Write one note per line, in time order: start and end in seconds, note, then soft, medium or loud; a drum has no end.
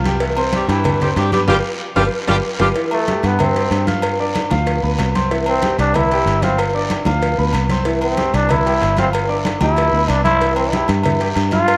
0.00 0.63 C2 loud
0.04 0.18 G3 medium
0.04 0.19 G4 medium
0.04 0.19 G5 medium
0.04 cowbell medium
0.04 high conga medium
0.04 short guiro medium
0.20 0.34 E3 medium
0.20 0.34 E4 medium
0.20 0.35 E5 medium
0.20 cowbell loud
0.20 long guiro medium
0.37 0.63 C4 medium
0.37 0.63 C5 medium
0.37 0.64 C6 medium
0.37 high conga soft
0.37 low agogo loud
0.53 0.69 G3 medium
0.53 0.69 G4 medium
0.53 cowbell medium
0.53 high conga loud
0.53 short guiro medium
0.68 1.13 G2 loud
0.68 1.01 E3 medium
0.68 0.95 G3 medium
0.68 1.00 E4 medium
0.68 0.95 G4 medium
0.68 0.95 G5 medium
0.68 cowbell medium
0.68 high conga soft
0.68 low agogo medium
0.68 short guiro medium
0.84 cowbell loud
0.84 high conga soft
0.84 low conga medium
0.84 low agogo loud
0.84 long guiro medium
1.01 1.10 G3 medium
1.01 1.27 C4 medium
1.01 1.09 G4 medium
1.01 1.28 C5 medium
1.01 1.28 C6 medium
1.01 cowbell medium
1.01 high conga soft
1.01 low conga medium
1.16 1.46 G2 medium
1.16 1.31 G3 medium
1.16 1.31 G4 loud
1.16 cowbell medium
1.16 low timbale medium
1.16 low agogo medium
1.16 short guiro medium
1.32 1.40 G3 medium
1.32 1.46 B3 medium
1.32 1.40 G4 medium
1.32 1.46 B4 medium
1.32 1.46 B5 medium
1.32 cowbell medium
1.32 high conga medium
1.32 low agogo medium
1.32 short guiro medium
1.48 1.60 G1 loud
1.48 1.56 G3 medium
1.48 1.56 D4 loud
1.48 1.56 F4 loud
1.48 1.59 F4 loud
1.48 1.56 G4 loud
1.48 1.59 G4 loud
1.48 1.59 B4 loud
1.48 cowbell loud
1.48 high conga loud
1.48 high timbale loud
1.48 long guiro loud
1.96 2.08 G1 loud
1.96 2.04 G3 medium
1.96 2.04 D4 loud
1.96 2.04 F4 loud
1.96 2.07 F4 loud
1.96 2.04 G4 medium
1.96 2.07 G4 loud
1.96 2.07 B4 loud
1.96 cowbell loud
1.96 high conga loud
1.96 high timbale loud
1.96 long guiro loud
2.27 2.40 G1 loud
2.27 2.36 G3 medium
2.27 2.36 D4 loud
2.27 2.38 F4 loud
2.27 2.36 F4 loud
2.27 2.36 G4 loud
2.27 2.39 G4 loud
2.27 2.39 B4 loud
2.27 cowbell loud
2.27 high conga loud
2.27 high timbale loud
2.27 long guiro loud
2.59 2.72 G1 medium
2.59 2.68 G3 medium
2.59 2.69 D4 loud
2.59 2.70 F4 loud
2.59 2.68 F4 loud
2.59 2.70 G4 loud
2.59 2.68 G4 medium
2.59 2.71 B4 loud
2.59 cowbell loud
2.59 high conga loud
2.59 high timbale loud
2.59 long guiro loud
2.75 3.02 E3 medium
2.75 3.02 E4 medium
2.75 3.02 E5 medium
2.75 cowbell loud
2.75 high conga soft
2.75 long guiro medium
2.91 3.27 A3 medium
2.91 high conga soft
2.91 low agogo loud
3.06 3.35 G3 medium
3.06 3.35 G4 medium
3.06 3.35 G5 medium
3.06 cowbell medium
3.06 high conga loud
3.06 short guiro medium
3.23 3.68 G2 loud
3.23 3.43 B3 medium
3.23 cowbell medium
3.23 high conga soft
3.23 low agogo medium
3.23 short guiro medium
3.39 3.53 E3 medium
3.39 3.88 C4 medium
3.39 3.53 E4 medium
3.39 3.53 E5 medium
3.39 cowbell loud
3.39 high conga soft
3.39 low conga medium
3.39 low agogo loud
3.39 long guiro medium
3.55 3.82 G3 medium
3.55 3.82 G4 medium
3.55 3.82 G5 medium
3.55 cowbell medium
3.55 high conga soft
3.71 4.45 G2 medium
3.71 cowbell medium
3.71 high conga soft
3.71 low timbale medium
3.71 low agogo medium
3.71 short guiro medium
3.87 3.96 A3 medium
3.87 4.13 F4 medium
3.87 4.13 F5 medium
3.87 4.14 F6 medium
3.87 cowbell medium
3.87 high conga medium
3.87 low agogo medium
3.87 short guiro medium
4.02 cowbell loud
4.02 high conga soft
4.02 low agogo loud
4.02 long guiro medium
4.19 4.46 D4 medium
4.19 4.46 D5 medium
4.19 4.46 D6 medium
4.19 high conga soft
4.34 cowbell medium
4.34 high conga loud
4.34 low agogo medium
4.34 short guiro medium
4.51 4.81 D2 loud
4.51 4.77 F3 medium
4.51 4.77 F4 loud
4.51 4.78 F5 loud
4.51 high conga medium
4.51 low agogo loud
4.51 short guiro medium
4.67 cowbell loud
4.67 high conga soft
4.67 low agogo medium
4.67 long guiro medium
4.82 4.98 D2 medium
4.82 5.09 B3 medium
4.82 5.09 B4 medium
4.82 5.09 B5 medium
4.82 high conga soft
4.99 5.73 C2 medium
4.99 cowbell medium
4.99 high conga soft
4.99 low timbale medium
4.99 low agogo loud
4.99 short guiro medium
5.15 5.28 C4 medium
5.15 5.28 C5 medium
5.15 5.28 C6 medium
5.15 cowbell medium
5.15 high conga medium
5.15 short guiro medium
5.31 5.57 E3 medium
5.31 5.57 E4 medium
5.31 5.57 E5 medium
5.31 cowbell loud
5.31 high conga soft
5.31 long guiro medium
5.46 5.77 C4 medium
5.46 high conga soft
5.46 low agogo loud
5.62 5.89 G3 medium
5.62 5.89 G4 medium
5.62 5.89 G5 medium
5.62 cowbell medium
5.62 high conga medium
5.62 short guiro medium
5.78 6.23 C2 loud
5.78 5.97 D4 medium
5.78 cowbell medium
5.78 low agogo medium
5.78 short guiro medium
5.94 6.08 E3 medium
5.94 6.45 E4 loud
5.94 6.08 E4 medium
5.94 6.09 E5 medium
5.94 cowbell loud
5.94 high conga soft
5.94 low conga medium
5.94 low agogo loud
5.94 long guiro medium
6.11 6.38 G3 medium
6.11 6.38 G4 medium
6.11 6.38 G5 medium
6.11 cowbell medium
6.11 high conga soft
6.26 7.00 G1 medium
6.26 cowbell medium
6.26 high conga soft
6.26 low agogo medium
6.26 short guiro medium
6.42 6.59 C4 medium
6.42 6.69 F4 medium
6.42 6.69 F5 medium
6.42 6.69 F6 medium
6.42 cowbell medium
6.42 high conga medium
6.42 low agogo medium
6.42 short guiro medium
6.58 cowbell loud
6.58 high conga soft
6.58 low agogo loud
6.58 long guiro medium
6.74 7.01 D4 medium
6.74 7.01 D5 medium
6.74 7.01 D6 medium
6.74 high conga soft
6.90 cowbell medium
6.90 high conga medium
6.90 low agogo medium
6.90 short guiro medium
7.05 7.36 D2 loud
7.05 7.32 F3 medium
7.05 7.32 F4 loud
7.05 7.33 F5 loud
7.05 high conga medium
7.05 low agogo loud
7.05 short guiro medium
7.22 cowbell loud
7.22 high conga soft
7.22 low agogo medium
7.22 long guiro medium
7.38 7.53 D2 medium
7.38 7.64 B3 medium
7.38 7.64 B4 medium
7.38 7.65 B5 medium
7.38 high conga soft
7.53 8.28 C2 medium
7.53 cowbell medium
7.53 high conga soft
7.53 low agogo loud
7.53 short guiro medium
7.69 7.83 C4 medium
7.69 7.83 C5 medium
7.69 7.84 C6 medium
7.69 cowbell medium
7.69 high conga medium
7.69 short guiro medium
7.85 8.12 E3 medium
7.85 8.12 E4 medium
7.85 8.12 E5 medium
7.85 cowbell loud
7.85 long guiro medium
8.02 8.36 C4 medium
8.02 high conga soft
8.02 low agogo loud
8.17 8.44 G3 medium
8.17 8.44 G4 medium
8.17 8.44 G5 medium
8.17 cowbell medium
8.17 high conga loud
8.17 short guiro medium
8.34 8.78 C2 loud
8.34 8.52 D4 loud
8.34 cowbell medium
8.34 high conga soft
8.34 low agogo medium
8.34 short guiro medium
8.49 8.63 E3 medium
8.49 8.63 E4 medium
8.49 8.98 E4 loud
8.49 8.63 E5 medium
8.49 cowbell loud
8.49 high conga soft
8.49 low conga medium
8.49 low agogo loud
8.49 long guiro medium
8.66 8.92 G3 medium
8.66 8.92 G4 medium
8.66 8.92 G5 medium
8.66 cowbell medium
8.66 high conga soft
8.81 9.56 G1 medium
8.81 cowbell medium
8.81 high conga soft
8.81 low timbale medium
8.81 low agogo medium
8.81 short guiro medium
8.97 9.08 C4 medium
8.97 9.24 F4 medium
8.97 9.24 F5 medium
8.97 9.24 F6 medium
8.97 cowbell medium
8.97 high conga medium
8.97 low agogo medium
8.97 short guiro medium
9.13 cowbell loud
9.13 high conga soft
9.13 low agogo loud
9.13 long guiro medium
9.28 9.55 D4 medium
9.28 9.55 D5 medium
9.28 9.55 D6 medium
9.28 high conga soft
9.45 cowbell medium
9.45 high conga loud
9.45 low agogo medium
9.45 short guiro medium
9.61 9.91 D2 loud
9.61 9.88 F3 medium
9.61 10.11 E4 loud
9.61 9.88 G4 loud
9.61 9.88 G5 loud
9.61 high conga medium
9.61 low agogo loud
9.61 short guiro medium
9.76 cowbell loud
9.76 high conga soft
9.76 low agogo medium
9.76 long guiro medium
9.93 10.08 D2 medium
9.93 10.19 B3 medium
9.93 10.20 B4 medium
9.93 10.20 B5 medium
9.93 high conga soft
10.08 10.83 C2 loud
10.08 10.23 D4 medium
10.08 cowbell medium
10.08 high conga soft
10.08 low agogo loud
10.08 short guiro medium
10.24 10.39 C4 medium
10.24 10.54 E4 loud
10.24 10.38 C5 medium
10.24 10.39 C6 medium
10.24 cowbell medium
10.24 high conga medium
10.24 short guiro medium
10.41 10.68 E3 medium
10.41 10.68 E4 medium
10.41 10.68 E5 medium
10.41 cowbell loud
10.41 high conga soft
10.41 long guiro medium
10.56 10.74 C4 medium
10.56 high conga soft
10.56 low agogo loud
10.72 10.99 G3 medium
10.72 10.89 E4 medium
10.72 10.99 G4 medium
10.72 10.99 G5 medium
10.72 cowbell medium
10.72 high conga loud
10.72 short guiro medium
10.88 11.33 G2 loud
10.88 cowbell medium
10.88 high conga soft
10.88 low agogo medium
10.88 short guiro medium
11.03 11.18 E3 medium
11.03 11.18 E4 medium
11.03 11.18 E5 medium
11.03 cowbell loud
11.03 high conga soft
11.03 low conga medium
11.03 low agogo loud
11.03 long guiro medium
11.20 11.46 G3 medium
11.20 11.47 G4 medium
11.20 11.47 G5 medium
11.20 cowbell medium
11.35 11.77 G2 loud
11.35 cowbell medium
11.35 high conga soft
11.35 low agogo medium
11.35 short guiro medium
11.51 11.77 F4 medium
11.51 11.77 F4 loud
11.51 11.77 F5 medium
11.51 11.77 F6 medium
11.51 cowbell medium
11.51 high conga medium
11.51 low agogo medium
11.51 short guiro medium
11.68 cowbell loud
11.68 high conga soft
11.68 low agogo loud
11.68 long guiro medium